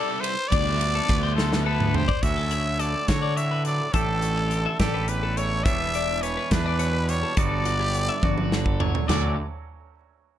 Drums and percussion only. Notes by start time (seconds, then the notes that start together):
0.24 ride
0.52 kick, ride
0.81 ride
1.09 kick, ride
1.38 snare
1.53 snare
1.80 mid tom
1.94 floor tom
2.09 kick
2.23 kick, closed hi-hat
2.51 closed hi-hat
2.80 closed hi-hat
3.08 kick, snare, closed hi-hat
3.37 closed hi-hat
3.65 closed hi-hat
3.94 kick, closed hi-hat
4.22 closed hi-hat
4.51 closed hi-hat
4.80 kick, snare, closed hi-hat
5.08 closed hi-hat
5.37 closed hi-hat
5.66 kick, closed hi-hat
5.94 closed hi-hat
6.23 closed hi-hat
6.51 kick, snare, closed hi-hat
6.79 closed hi-hat
7.09 closed hi-hat
7.37 kick, closed hi-hat
7.65 closed hi-hat
7.94 closed hi-hat
8.23 kick, high tom
8.38 high tom
8.52 snare
8.66 kick
8.80 floor tom
8.95 floor tom
9.09 snare, floor tom, crash